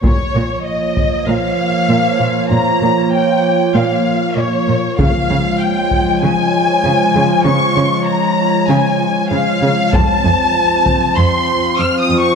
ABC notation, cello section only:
X:1
M:4/4
L:1/8
Q:1/4=97
K:Bbdor
V:1 name="Cello section" clef=bass
B,, B,, z2 B,, z B,, B,, | B,, B,, z2 B,, z B,, B,, | D, D, z2 D, z D, D, | D, D, z2 D, z D, D, |
F,, F,, z2 F,, z F,, F,, |]